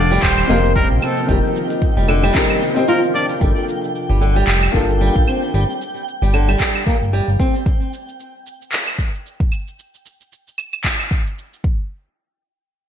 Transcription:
Already playing: analog synth bass F1, ambient pad C3 F3 A#3 F4 D#5, nylon-string guitar D3, felt piano C4 G4 A#4 D#5, muted trumpet D5, synth texture G5
0.11 nylon-string guitar G3, open hi-hat, shaker
0.22 analog synth bass D#1, muted trumpet C5, kick, clap, open hi-hat, shaker
0.38 claves
0.47 analog synth bass F1, nylon-string guitar A#3, felt piano C4 G4 A#4 D#5, shaker
0.64 open hi-hat, shaker
0.76 nylon-string guitar G3, muted trumpet A#4, kick, open hi-hat, shaker
0.91 analog synth bass A#1
1.02 nylon-string guitar C4, muted trumpet A4, claves, shaker
1.17 open hi-hat, shaker
1.27 analog synth bass F1, nylon-string guitar G3, felt piano C4 D#4 G4 A#4, ambient pad D#5, kick, open hi-hat, shaker
1.45 shaker
1.56 shaker
1.70 open hi-hat, shaker
1.82 kick, open hi-hat, shaker
1.97 analog synth bass F1, nylon-string guitar G3, shaker
2.08 nylon-string guitar D3, claves, shaker
2.23 nylon-string guitar G3, open hi-hat, claves, shaker
2.34 felt piano C4 D#4 G4 A#4, kick, clap, open hi-hat, shaker
2.50 claves
2.62 shaker
2.75 felt piano C4 G4 D#5, nylon-string guitar C4, open hi-hat, shaker
2.79 felt piano C5
2.88 nylon-string guitar F4, muted trumpet A#4, open hi-hat, shaker
3.04 shaker
3.14 nylon-string guitar D4, muted trumpet D5, shaker
3.29 open hi-hat, shaker
3.39 analog synth bass G1, nylon-string guitar G3, felt piano A#3 D4 F4, synth texture G5, kick, shaker
3.43 felt piano A4
3.57 shaker
3.69 shaker
3.84 shaker
3.96 shaker
4.09 analog synth bass G1, nylon-string guitar G3
4.21 nylon-string guitar D3, shaker
4.36 nylon-string guitar G3, shaker
4.47 analog synth bass F1, clap, shaker
4.63 claves
4.72 analog synth bass G1, felt piano A#3 D4 F4 A4, nylon-string guitar A#3, kick, shaker
4.90 shaker
5.01 nylon-string guitar G3, shaker
5.16 analog synth bass A#1, kick
5.28 nylon-string guitar C4, claves, shaker
5.43 shaker
5.54 analog synth bass G1, nylon-string guitar G3, shaker
5.70 shaker
5.82 shaker
5.97 shaker
6.08 shaker
6.22 analog synth bass G1, nylon-string guitar G3, shaker
6.34 nylon-string guitar D3, claves, shaker
6.49 nylon-string guitar G3, claves, shaker
6.60 kick, clap, shaker
6.75 claves
6.87 nylon-string guitar A#3, kick, shaker
7.02 analog synth bass G1, shaker
7.13 nylon-string guitar G3, shaker
7.28 analog synth bass G1, shaker
7.40 nylon-string guitar C4, kick, shaker
7.56 shaker
7.66 kick, shaker
7.82 shaker
7.93 shaker
8.09 shaker
8.20 shaker
8.47 shaker
8.62 shaker
8.72 clap, shaker
8.87 claves
8.99 kick, shaker
9.15 shaker
9.26 shaker
9.40 kick
9.52 claves, shaker
9.68 shaker
9.79 shaker
9.94 shaker
10.06 shaker
10.21 shaker
10.33 shaker
10.48 shaker
10.58 claves, shaker
10.73 claves, shaker
10.84 kick, clap, shaker
10.99 claves
11.11 kick, shaker
11.27 shaker
11.38 shaker
11.53 shaker
11.64 kick

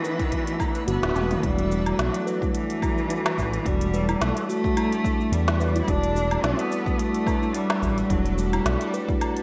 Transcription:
Already playing: cello E3, analog synth pad E3 A3 D4 F#4 B4, synth texture B3 E5
0.04 steel tongue drum B4, cabasa
0.19 steel tongue drum E4, kick, closed hi-hat, cabasa
0.32 kick, closed hi-hat, cabasa
0.47 closed hi-hat, cabasa
0.60 steel tongue drum E4, kick, cabasa, low woodblock
0.75 closed hi-hat, cabasa
0.88 analog synth bass G1, cello B3, steel tongue drum F#4, closed hi-hat, cabasa
1.03 analog synth bass D1, snare, closed hi-hat, high tom, cabasa
1.15 analog synth bass E1, mid tom, cabasa
1.31 steel tongue drum E4, closed hi-hat, mid tom, cabasa
1.41 analog synth bass E1, synth keys E3 A3 D4, cello G3, analog synth pad F#4 A4 D5, kick, closed hi-hat, cabasa
1.46 synth keys F#4
1.59 closed hi-hat
1.72 cabasa
1.86 steel tongue drum E4, closed hi-hat, cabasa, low woodblock
1.99 analog synth bass B1, cello F#3, snare, closed hi-hat, cabasa
2.14 closed hi-hat, cabasa
2.27 steel tongue drum B4, cabasa
2.41 synth keys G3 A3 D4 F#4, steel tongue drum E4, kick, cabasa
2.55 cello E3, closed hi-hat, cabasa
2.70 closed hi-hat, cabasa
2.81 synth keys G3 A3 D4 E4, steel tongue drum F#4, kick, cabasa, low woodblock
2.98 cabasa
3.10 steel tongue drum E4, closed hi-hat, cabasa
3.26 snare, closed hi-hat, low woodblock
3.38 analog synth bass A1, kick, cabasa
3.53 steel tongue drum E4, closed hi-hat, cabasa
3.64 analog synth bass E1, synth keys G3 A3 D4, cello G3, kick, closed hi-hat, cabasa
3.68 synth keys F#4
3.81 closed hi-hat, cabasa
3.94 steel tongue drum B4, cabasa
4.09 steel tongue drum E4, closed hi-hat, cabasa, low woodblock
4.21 analog synth bass B1, cello A3, snare, closed hi-hat, cabasa
4.37 closed hi-hat, cabasa
4.49 cello A3, steel tongue drum F#4, cabasa
4.63 synth keys G3 A3 D4 F#4, kick, cabasa
4.77 steel tongue drum E4, closed hi-hat, cabasa, low woodblock
4.93 closed hi-hat, cabasa
5.03 synth keys G3 A3 D4 E4, kick, cabasa
5.20 steel tongue drum E4, cabasa
5.32 analog synth bass E2, cello G3, closed hi-hat, cabasa
5.48 snare, closed hi-hat, cabasa
5.60 steel tongue drum B4, cabasa
5.75 steel tongue drum E4, closed hi-hat, cabasa
5.81 cello E4
5.86 analog synth bass E1, synth keys G3 A3 D4, cello D4, kick, closed hi-hat, cabasa
5.90 synth keys F#4
6.04 closed hi-hat
6.16 steel tongue drum F#4, cabasa
6.31 closed hi-hat, cabasa, low woodblock
6.43 analog synth bass B1, cello B3, steel tongue drum E4, snare, closed hi-hat, cabasa
6.59 closed hi-hat, cabasa
6.72 cabasa
6.85 synth keys G3 A3 D4 F#4, steel tongue drum E4, kick, cabasa
6.99 cello A3, closed hi-hat, cabasa
7.15 closed hi-hat, cabasa
7.25 synth keys G3 A3 D4, steel tongue drum B4, kick, cabasa, low woodblock
7.29 synth keys E4
7.42 steel tongue drum E4, cabasa
7.55 cello G3, closed hi-hat, cabasa
7.70 snare, closed hi-hat, low woodblock
7.82 analog synth bass A1, steel tongue drum F#4, kick, cabasa
7.98 closed hi-hat, cabasa
8.08 analog synth bass E1, cello F#3, synth keys G3 A3 D4, steel tongue drum E4, kick, closed hi-hat, cabasa
8.12 synth keys F#4
8.26 closed hi-hat, cabasa
8.37 cello G3, cabasa
8.53 steel tongue drum E4, closed hi-hat, cabasa, low woodblock
8.66 analog synth bass B1, snare, closed hi-hat, cabasa
8.81 closed hi-hat, cabasa
8.94 steel tongue drum B4, cabasa
9.08 synth keys G3 A3 D4 F#4, steel tongue drum E4, kick, cabasa
9.21 closed hi-hat, cabasa, low woodblock
9.37 closed hi-hat, cabasa

